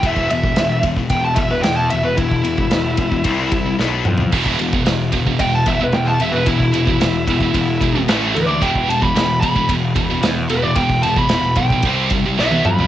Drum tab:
CC |----------------|----------------|x---------------|----------------|
RD |x-x-x-x-x-x-x-x-|x-x-x-x-x-x-----|--x-x-x-x-x-x-x-|x-x-x-x-x-x-x-x-|
SD |----o-------o---|----o-------o---|----o-------o---|----o-------o---|
T1 |----------------|----------------|----------------|----------------|
T2 |----------------|--------------o-|----------------|----------------|
FT |----------------|---------------o|----------------|----------------|
BD |oo-o--ooo-o-----|oo-o--ooo-o-----|oo-o--ooo-o-----|oo-o--ooo-o-----|

CC |----------------|----------------|
RD |x-x-x-x-x-x-x-x-|x-x-x-x-x-x-----|
SD |----o-------o---|----o-------o---|
T1 |----------------|-------------o--|
T2 |----------------|--------------o-|
FT |----------------|---------------o|
BD |oo-o--ooo-o-----|oo-o--ooo-o-----|